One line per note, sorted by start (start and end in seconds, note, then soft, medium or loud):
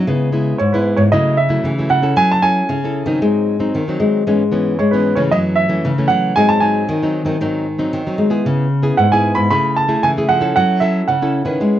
0.07 0.52 C#3 medium
0.07 0.58 C#3 medium
0.07 0.30 G#3 medium
0.07 0.30 B3 medium
0.07 0.30 E4 medium
0.32 0.58 G#3 medium
0.32 0.58 B3 medium
0.32 0.58 E4 medium
0.58 0.93 G#2 medium
0.58 1.10 G#2 medium
0.58 0.73 C#5 medium
0.73 1.09 G#3 medium
0.73 1.09 B3 medium
0.73 1.09 E4 medium
0.73 0.97 B4 medium
0.97 1.09 G#2 medium
0.97 1.02 C#5 medium
1.12 1.57 C#3 medium
1.12 1.62 C#3 medium
1.12 1.37 F#3 medium
1.12 1.37 A3 medium
1.12 1.38 E4 medium
1.12 1.39 D#5 medium
1.37 1.92 E5 medium
1.49 1.73 F#3 medium
1.49 1.73 A3 medium
1.49 1.73 E4 medium
1.64 2.14 C#3 medium
1.64 1.87 E3 medium
1.79 2.01 F#3 medium
1.79 2.01 A3 medium
1.79 2.01 E4 medium
1.89 2.12 C#3 medium
1.89 2.15 F#5 medium
2.02 2.38 C#4 medium
2.02 2.39 E4 medium
2.02 2.39 A4 medium
2.16 2.61 F#3 loud
2.16 2.67 F#3 medium
2.16 2.29 G#5 loud
2.31 2.43 A5 loud
2.42 2.78 C#4 medium
2.42 2.78 E4 medium
2.42 2.79 A4 medium
2.42 3.96 G#5 loud
2.69 3.03 C#3 medium
2.69 3.20 C#3 medium
2.84 3.06 C#4 medium
2.84 3.06 E4 medium
2.84 3.06 A4 medium
3.06 3.18 D#3 medium
3.06 3.56 F#3 medium
3.06 3.56 C4 medium
3.06 3.56 D#4 medium
3.22 3.72 G#2 medium
3.22 3.67 G#3 medium
3.59 3.83 F#3 medium
3.59 3.83 C4 medium
3.59 3.83 D#4 medium
3.74 4.24 D#3 medium
3.74 3.97 D#3 medium
3.88 4.23 F#3 medium
3.88 4.23 C4 medium
3.88 4.23 D#4 medium
4.00 4.22 G#3 medium
4.27 4.77 G#2 medium
4.27 4.42 E3 medium
4.27 4.72 G#3 loud
4.27 4.43 B3 medium
4.27 4.43 C#4 medium
4.52 4.77 E3 medium
4.52 4.77 B3 medium
4.52 4.77 C#4 medium
4.79 5.29 G#2 medium
4.79 5.13 G#3 medium
4.79 4.93 C#5 medium
4.91 5.15 E3 medium
4.91 5.15 B3 medium
4.91 5.15 C#4 medium
4.91 5.19 B4 medium
5.15 5.29 C#3 medium
5.15 5.66 E3 medium
5.15 5.66 A3 medium
5.15 5.66 C#4 medium
5.15 5.20 C#5 medium
5.31 5.82 F#2 medium
5.31 5.76 F#3 medium
5.31 5.37 D#5 medium
5.56 6.05 E5 loud
5.69 5.92 E3 medium
5.69 5.92 A3 medium
5.69 5.92 C#4 medium
5.84 6.34 C#3 medium
5.84 6.07 C#3 medium
5.98 6.33 E3 medium
5.98 6.33 A3 medium
5.98 6.33 C#4 medium
6.08 6.32 F#3 medium
6.08 6.36 F#5 medium
6.36 6.87 G#2 medium
6.36 6.59 F#3 medium
6.36 6.81 G#3 loud
6.36 6.59 C4 medium
6.36 6.59 D#4 medium
6.36 6.48 G#5 loud
6.49 6.63 A5 loud
6.60 6.97 F#3 medium
6.60 6.98 C4 medium
6.60 6.98 D#4 medium
6.60 8.15 G#5 medium
6.89 7.39 D#3 medium
6.89 7.22 D#3 medium
7.03 7.24 F#3 medium
7.03 7.24 C4 medium
7.03 7.25 D#4 medium
7.25 7.38 D#3 medium
7.25 7.36 F#3 medium
7.25 7.36 C4 medium
7.25 7.36 D#4 medium
7.41 7.91 G#2 medium
7.41 7.86 D#3 medium
7.41 7.66 F#3 medium
7.41 7.66 C4 medium
7.41 7.66 D#4 medium
7.79 8.02 F#3 medium
7.79 8.02 C4 medium
7.79 8.02 D#4 medium
7.93 8.16 D#3 medium
7.93 8.43 D#3 medium
8.07 8.29 F#3 medium
8.07 8.29 C4 medium
8.07 8.30 D#4 medium
8.18 8.41 G#3 medium
8.30 8.67 B3 medium
8.30 8.67 E4 medium
8.30 8.67 G#4 medium
8.45 8.96 C#3 medium
8.45 8.91 C#3 loud
8.83 9.06 B3 medium
8.83 9.06 E4 medium
8.83 9.06 G#4 medium
8.97 9.48 G#2 medium
8.97 9.32 G#2 medium
8.97 9.12 F#5 medium
9.12 9.47 B3 medium
9.12 9.47 E4 medium
9.12 9.48 G#4 medium
9.12 9.39 G#5 medium
9.35 9.48 G#2 medium
9.35 9.49 B5 loud
9.50 10.01 C#3 medium
9.50 9.96 C#3 medium
9.50 9.86 A3 medium
9.50 9.86 E4 medium
9.50 9.87 G#4 medium
9.50 9.78 B5 loud
9.77 10.04 A5 medium
9.88 10.11 A3 medium
9.88 10.11 E4 medium
9.88 10.12 G#4 medium
10.03 10.53 C#3 medium
10.03 10.26 E3 medium
10.03 10.09 G#5 medium
10.17 10.39 A3 medium
10.17 10.39 E4 medium
10.17 10.39 G#4 medium
10.29 10.51 F3 medium
10.29 10.54 F#5 medium
10.41 10.80 C#4 medium
10.41 10.80 E4 medium
10.41 10.81 A4 medium
10.56 11.06 F#3 medium
10.56 11.01 F#3 loud
10.56 10.83 F#5 medium
10.80 11.17 C#4 medium
10.80 11.17 E4 soft
10.80 11.17 A4 medium
10.80 11.05 E5 medium
11.08 11.58 C#3 medium
11.08 11.42 C#3 medium
11.08 11.79 F#5 medium
11.22 11.44 C#4 medium
11.22 11.44 E4 medium
11.22 11.44 A4 medium
11.45 11.57 D#3 medium
11.45 11.79 C#4 medium
11.45 11.79 E4 medium
11.45 11.79 B4 medium
11.60 11.79 G#3 medium